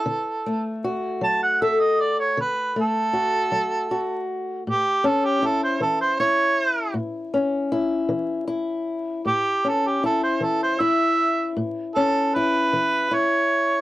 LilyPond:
<<
  \new Staff \with { instrumentName = "Harmonica" } { \time 12/8 \key a \mixolydian \tempo 4. = 52 a'4 r8 a''16 fis''16 e''16 dis''16 d''16 cis''16 b'8 a'2 r8 | g'8 a'16 g'16 a'16 c''16 a'16 c''16 cis''4 r2. | g'8 a'16 g'16 a'16 c''16 a'16 c''16 e''4 r8 a'8 b'4 cis''4 | }
  \new Staff \with { instrumentName = "Steel-string acoustic guitar" } { \time 12/8 \key a \mixolydian << { r8 a8 fis'4 a'4. a8 fis'4 fis'4 | r8 cis'8 e'4 e'4. cis'8 e'4 e'4 | r8 cis'8 e'4 e'4. cis'8 e'4 e'4 | } \\ { d4 r8 fis4 r8 d4 r8 fis4 r8 | a,4 r8 e4 r8 a,4 r8 e4 r8 | a,4 r8 e4 r8 a,4 r8 e4 r8 | } >> }
>>